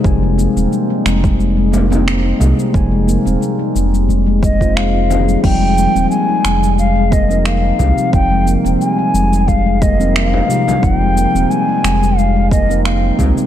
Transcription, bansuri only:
4.43 4.77 D#5 loud
4.76 5.43 F5 medium
5.44 6.07 G5 loud
6.10 6.74 G#5 loud
6.79 7.14 F5 loud
7.12 7.47 D#5 loud
7.46 8.13 F5 loud
8.14 8.52 G5 loud
8.81 9.49 G#5 loud
9.48 9.83 F5 loud
9.82 10.17 D#5 loud
10.15 10.26 E5 loud
10.26 10.85 F5 loud
10.83 10.96 F#5 loud
10.96 11.52 G5 loud
11.50 12.19 G#5 loud
12.18 12.51 F5 loud
12.52 12.83 D#5 loud
12.85 13.23 F5 medium

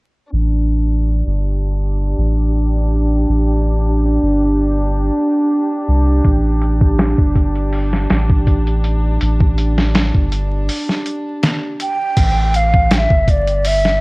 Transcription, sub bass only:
0.33 1.22 A1 medium
1.27 2.14 G1 medium
2.18 3.25 A1 medium
3.29 4.18 A1 medium
4.23 5.10 G1 medium
5.88 6.21 C2 medium
6.25 7.15 A1 medium
7.19 8.07 G1 medium
8.11 9.18 A1 medium
9.22 10.11 A1 medium
10.15 10.69 G1 medium
12.17 13.07 A1 medium
13.11 13.99 G1 medium

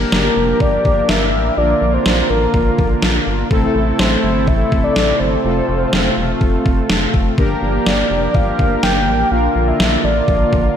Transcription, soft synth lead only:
0.12 0.62 A#4 medium
0.61 1.11 D5 loud
1.09 1.59 E5 loud
1.57 1.95 D5 loud
1.94 2.31 C5 loud
2.30 3.27 A#4 medium
3.99 4.49 C5 loud
4.47 4.85 E5 loud
4.84 5.21 D5 loud
5.20 6.65 C5 loud
7.86 8.36 D5 medium
8.35 8.82 F5 loud
8.83 9.33 G5 loud
9.31 9.69 F5 loud
9.68 10.06 E5 loud
10.04 10.77 D5 medium

